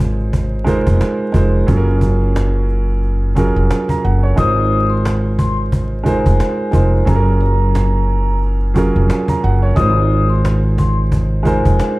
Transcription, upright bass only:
0, 0, Header, 1, 2, 480
1, 0, Start_track
1, 0, Tempo, 674157
1, 1195, Time_signature, 4, 2, 24, 8
1, 8540, End_track
2, 0, Start_track
2, 0, Title_t, "Upright bass"
2, 0, Program_c, 0, 32
2, 0, Note_on_c, 0, 32, 104
2, 586, Note_off_c, 0, 32, 0
2, 620, Note_on_c, 0, 29, 94
2, 707, Note_off_c, 0, 29, 0
2, 956, Note_on_c, 0, 29, 93
2, 1167, Note_off_c, 0, 29, 0
2, 1198, Note_on_c, 0, 30, 113
2, 2506, Note_off_c, 0, 30, 0
2, 2537, Note_on_c, 0, 29, 95
2, 2625, Note_off_c, 0, 29, 0
2, 2881, Note_on_c, 0, 30, 97
2, 3090, Note_off_c, 0, 30, 0
2, 3117, Note_on_c, 0, 32, 102
2, 4426, Note_off_c, 0, 32, 0
2, 4458, Note_on_c, 0, 29, 99
2, 4546, Note_off_c, 0, 29, 0
2, 4795, Note_on_c, 0, 29, 94
2, 5007, Note_off_c, 0, 29, 0
2, 5037, Note_on_c, 0, 30, 115
2, 6346, Note_off_c, 0, 30, 0
2, 6378, Note_on_c, 0, 29, 95
2, 6466, Note_off_c, 0, 29, 0
2, 6720, Note_on_c, 0, 30, 99
2, 6930, Note_off_c, 0, 30, 0
2, 6957, Note_on_c, 0, 32, 109
2, 8265, Note_off_c, 0, 32, 0
2, 8300, Note_on_c, 0, 29, 91
2, 8387, Note_off_c, 0, 29, 0
2, 8540, End_track
0, 0, End_of_file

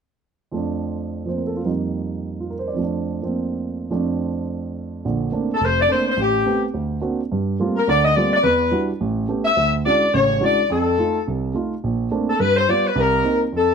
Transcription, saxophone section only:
0, 0, Header, 1, 2, 480
1, 0, Start_track
1, 0, Key_signature, -2, "major"
1, 0, Tempo, 282885
1, 881, Time_signature, 4, 2, 24, 8
1, 23321, End_track
2, 0, Start_track
2, 0, Title_t, "Saxophone section"
2, 0, Program_c, 0, 65
2, 9410, Note_on_c, 0, 69, 72
2, 9552, Note_off_c, 0, 69, 0
2, 9598, Note_on_c, 0, 72, 86
2, 9842, Note_off_c, 0, 72, 0
2, 9867, Note_on_c, 0, 74, 88
2, 10020, Note_off_c, 0, 74, 0
2, 10051, Note_on_c, 0, 72, 75
2, 10291, Note_off_c, 0, 72, 0
2, 10345, Note_on_c, 0, 72, 84
2, 10499, Note_off_c, 0, 72, 0
2, 10539, Note_on_c, 0, 67, 69
2, 11221, Note_off_c, 0, 67, 0
2, 13175, Note_on_c, 0, 70, 65
2, 13353, Note_off_c, 0, 70, 0
2, 13373, Note_on_c, 0, 74, 93
2, 13631, Note_off_c, 0, 74, 0
2, 13660, Note_on_c, 0, 75, 85
2, 13836, Note_off_c, 0, 75, 0
2, 13847, Note_on_c, 0, 74, 83
2, 14124, Note_off_c, 0, 74, 0
2, 14144, Note_on_c, 0, 74, 86
2, 14228, Note_off_c, 0, 74, 0
2, 14314, Note_on_c, 0, 71, 72
2, 15028, Note_off_c, 0, 71, 0
2, 16035, Note_on_c, 0, 76, 87
2, 16487, Note_off_c, 0, 76, 0
2, 16717, Note_on_c, 0, 74, 81
2, 17166, Note_off_c, 0, 74, 0
2, 17212, Note_on_c, 0, 73, 79
2, 17655, Note_off_c, 0, 73, 0
2, 17720, Note_on_c, 0, 74, 79
2, 18150, Note_off_c, 0, 74, 0
2, 18195, Note_on_c, 0, 69, 64
2, 19073, Note_off_c, 0, 69, 0
2, 20869, Note_on_c, 0, 69, 69
2, 21042, Note_off_c, 0, 69, 0
2, 21044, Note_on_c, 0, 71, 91
2, 21324, Note_on_c, 0, 72, 90
2, 21327, Note_off_c, 0, 71, 0
2, 21508, Note_off_c, 0, 72, 0
2, 21540, Note_on_c, 0, 74, 81
2, 21815, Note_off_c, 0, 74, 0
2, 21833, Note_on_c, 0, 71, 72
2, 22016, Note_off_c, 0, 71, 0
2, 22052, Note_on_c, 0, 70, 83
2, 22739, Note_off_c, 0, 70, 0
2, 23009, Note_on_c, 0, 69, 69
2, 23321, Note_off_c, 0, 69, 0
2, 23321, End_track
0, 0, End_of_file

